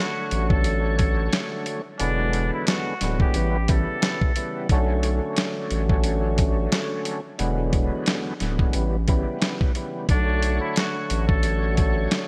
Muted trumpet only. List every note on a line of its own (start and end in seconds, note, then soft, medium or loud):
0.00 0.48 F#4 medium
0.49 0.95 A4 medium
0.98 1.29 A4 medium
1.99 2.49 D4 loud
2.54 2.66 E4 medium
2.67 3.17 F#4 medium
3.21 3.66 G4 medium
3.70 4.66 A4 medium
10.11 10.60 D4 loud
10.61 10.74 E4 medium
10.78 11.27 F#4 medium
11.28 11.74 A4 medium
11.77 12.07 A4 medium